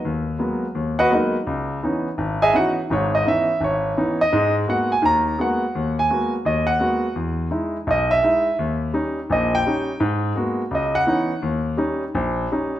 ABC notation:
X:1
M:4/4
L:1/8
Q:"Swing" 1/4=169
K:G#m
V:1 name="Grand piano"
z4 z [FBdf] [DABd] z | z4 z [Gdeg] [Ff] z | c d e2 c3 d- | d z f g a2 f2- |
f g2 z d f3 | z4 d e3 | z4 d =g3 | z4 d f3 |
z8 |]
V:2 name="Grand piano"
D,,2 [F,G,A,B,] z D,,2 [F,G,A,B,] z | C,,2 [E,B,CD] z G,,,2 [E,B,CD] z | [G,,,G,,]2 [E,B,CD] z G,,,2 [E,B,CD] z | [G,,G,]2 [G,A,B,F] z [D,,D,]2 [G,A,B,F] z |
D,,2 [G,A,B,F] z D,,2 [G,A,B,F] z | E,,2 [G,DE] z B,,,2 [G,DE] z | D,,2 [=G,CD] z [A,,,A,,]2 [G,CD] z | G,,2 [G,A,B,F] z C,,2 [E,B,CD] z |
D,,2 [=G,CD] z A,,,2 [G,CD] z |]